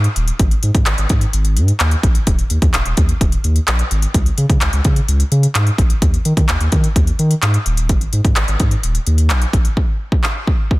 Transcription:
0.04 closed hi-hat medium
0.16 0.31 D#1 loud
0.16 closed hi-hat medium
0.28 closed hi-hat medium
0.39 0.55 G#1 loud
0.39 kick loud
0.39 closed hi-hat loud
0.51 closed hi-hat soft
0.63 0.71 G#2 loud
0.63 closed hi-hat medium
0.75 0.82 G#2 medium
0.75 kick loud
0.75 closed hi-hat medium
0.86 0.94 G#1 loud
0.86 clap loud
0.86 closed hi-hat medium
0.98 1.06 G#1 loud
0.98 closed hi-hat medium
1.09 1.25 G#2 medium
1.09 kick medium
1.09 closed hi-hat medium
1.21 closed hi-hat medium
1.33 1.58 G#1 loud
1.33 closed hi-hat medium
1.45 closed hi-hat medium
1.57 1.72 G#2 loud
1.57 closed hi-hat medium
1.68 closed hi-hat soft
1.80 1.95 D#2 medium
1.80 clap loud
1.80 closed hi-hat medium
1.91 closed hi-hat medium
2.03 2.19 A#1 loud
2.03 kick loud
2.03 closed hi-hat medium
2.15 closed hi-hat medium
2.27 2.42 D#1 loud
2.27 kick loud
2.27 closed hi-hat medium
2.39 closed hi-hat soft
2.50 2.58 D#2 loud
2.50 closed hi-hat medium
2.62 2.70 D#2 loud
2.62 kick medium
2.62 closed hi-hat medium
2.74 2.81 D#1 loud
2.74 clap loud
2.74 closed hi-hat medium
2.86 2.93 D#1 loud
2.86 closed hi-hat medium
2.97 3.13 D#2 loud
2.97 kick medium
2.97 closed hi-hat medium
3.09 closed hi-hat soft
3.21 3.36 D#1 loud
3.21 kick medium
3.21 closed hi-hat medium
3.32 closed hi-hat medium
3.44 3.59 D#2 loud
3.44 closed hi-hat medium
3.56 closed hi-hat soft
3.68 3.83 A#1 loud
3.68 clap loud
3.68 closed hi-hat loud
3.79 closed hi-hat medium
3.91 4.06 G#1 medium
3.91 closed hi-hat medium
4.02 closed hi-hat medium
4.14 4.30 C#2 loud
4.14 kick loud
4.14 closed hi-hat loud
4.26 closed hi-hat soft
4.38 4.45 C#3 loud
4.38 closed hi-hat medium
4.50 4.57 C#3 medium
4.50 kick medium
4.50 closed hi-hat medium
4.61 4.69 C#2 loud
4.61 clap loud
4.61 closed hi-hat medium
4.73 4.81 C#2 loud
4.73 closed hi-hat medium
4.84 5.00 C#3 medium
4.84 kick medium
4.84 closed hi-hat medium
4.96 closed hi-hat medium
5.08 5.23 C#2 loud
5.08 closed hi-hat medium
5.20 closed hi-hat medium
5.32 5.47 C#3 loud
5.32 closed hi-hat medium
5.43 closed hi-hat medium
5.55 5.70 G#2 loud
5.55 clap loud
5.55 closed hi-hat loud
5.67 closed hi-hat medium
5.78 5.94 A#1 medium
5.78 kick loud
5.78 closed hi-hat medium
5.90 closed hi-hat medium
6.02 6.17 D#2 loud
6.02 kick loud
6.02 closed hi-hat loud
6.14 closed hi-hat soft
6.25 6.33 D#3 loud
6.25 closed hi-hat medium
6.37 6.45 D#3 loud
6.37 kick medium
6.37 closed hi-hat medium
6.49 6.56 D#2 loud
6.49 clap loud
6.49 closed hi-hat medium
6.60 6.68 D#2 loud
6.60 closed hi-hat medium
6.72 6.88 D#3 loud
6.72 kick medium
6.72 closed hi-hat medium
6.84 closed hi-hat medium
6.96 7.11 D#2 loud
6.96 kick medium
6.96 closed hi-hat medium
7.07 closed hi-hat medium
7.19 7.34 D#3 medium
7.19 closed hi-hat medium
7.31 closed hi-hat medium
7.42 7.58 G#2 medium
7.42 clap loud
7.42 closed hi-hat loud
7.54 closed hi-hat medium
7.66 7.91 D#1 loud
7.66 closed hi-hat medium
7.77 closed hi-hat medium
7.89 8.05 G#1 loud
7.89 kick loud
7.89 closed hi-hat loud
8.01 closed hi-hat soft
8.13 8.21 G#2 medium
8.13 closed hi-hat medium
8.25 8.32 G#2 loud
8.25 kick medium
8.25 closed hi-hat medium
8.36 8.44 G#1 loud
8.36 clap loud
8.36 closed hi-hat medium
8.48 8.56 G#1 loud
8.48 closed hi-hat medium
8.60 8.75 G#2 medium
8.60 kick medium
8.60 closed hi-hat medium
8.71 closed hi-hat medium
8.83 8.99 D#1 loud
8.83 closed hi-hat medium
8.95 closed hi-hat medium
9.07 9.32 D#2 medium
9.07 closed hi-hat medium
9.18 closed hi-hat soft
9.30 9.45 A#1 loud
9.30 clap loud
9.30 closed hi-hat medium
9.42 closed hi-hat medium
9.53 9.69 A#1 medium
9.53 kick loud
9.53 closed hi-hat medium
9.65 closed hi-hat medium
9.77 kick loud
10.12 kick medium
10.24 clap loud
10.47 kick medium
10.71 kick medium

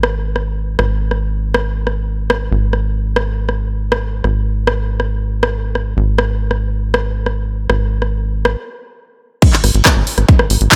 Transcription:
0.00 0.77 G#1 medium
0.00 cross-stick medium
0.36 cross-stick soft
0.79 2.49 G#1 medium
0.79 cross-stick medium
1.11 cross-stick soft
1.54 cross-stick medium
1.87 cross-stick soft
2.30 cross-stick medium
2.52 4.22 G#1 medium
2.73 cross-stick soft
3.16 cross-stick medium
3.49 cross-stick soft
3.92 cross-stick medium
4.24 5.95 G#1 medium
4.24 cross-stick soft
4.67 cross-stick medium
5.00 cross-stick soft
5.43 cross-stick medium
5.75 cross-stick soft
5.97 7.67 G#1 medium
6.18 cross-stick medium
6.51 cross-stick soft
6.94 cross-stick medium
7.26 cross-stick soft
7.70 8.56 G#1 medium
7.70 cross-stick medium
8.02 cross-stick soft
8.45 cross-stick medium
9.42 kick loud
9.42 closed hi-hat medium
9.42 crash loud
9.53 clap soft
9.64 9.71 G#1 loud
9.64 cross-stick soft
9.64 open hi-hat loud
9.75 9.81 G#1 medium
9.75 closed hi-hat medium
9.85 kick loud
9.85 cross-stick medium
9.85 clap loud
9.85 closed hi-hat medium
9.96 10.03 G#1 medium
10.07 open hi-hat loud
10.18 10.25 G#1 medium
10.18 cross-stick soft
10.18 closed hi-hat medium
10.29 kick loud
10.29 closed hi-hat medium
10.39 cross-stick medium
10.50 10.57 G#1 medium
10.50 open hi-hat loud
10.61 10.68 G#1 medium
10.61 closed hi-hat medium
10.72 kick loud
10.72 cross-stick soft
10.72 clap loud
10.72 closed hi-hat medium

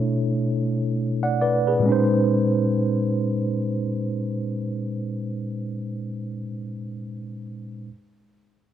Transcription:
0.00 1.87 B2 medium
0.00 1.86 A3 medium
0.00 1.87 D4 medium
0.00 1.86 E4 medium
0.00 1.86 C#5 medium
1.23 1.40 D5 soft
1.23 1.40 F#5 medium
1.42 1.66 B4 medium
1.42 1.66 D5 medium
1.67 2.09 G#4 medium
1.67 2.09 B4 medium
1.80 6.36 A#2 medium
1.80 6.39 G#3 medium
1.86 6.42 C#4 medium
1.86 6.45 D#4 medium
1.92 6.48 C5 medium

